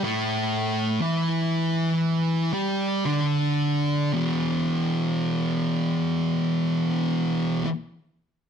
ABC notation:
X:1
M:4/4
L:1/8
Q:1/4=54
K:Em
V:1 name="Distorted electric guitar" clef=bass
[A,,A,]2 [E,E]3 [G,G] [D,D]2 | [E,,B,,E,]8 |]